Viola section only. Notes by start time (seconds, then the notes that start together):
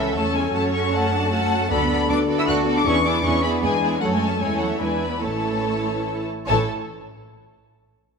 Already playing: C#4 A4
0.15 C#4
0.55 C#4
0.93 C#4
1.13 D4
1.32 C#4 F#4
1.70 B3 F#4
1.89 B3 F#4
2.08 B3 F#4
2.28 B3 F#4
2.48 B3 F#4
2.66 B3 F#4
2.86 B3 E4
3.05 B3 E4
3.25 B3 E4
3.43 B3 E4
3.63 B3 E4
3.82 B3 E4
4.01 A3 C#4
4.41 A3 E4
4.80 E3 E4
5.22 E3 E4
6.49 E3 E4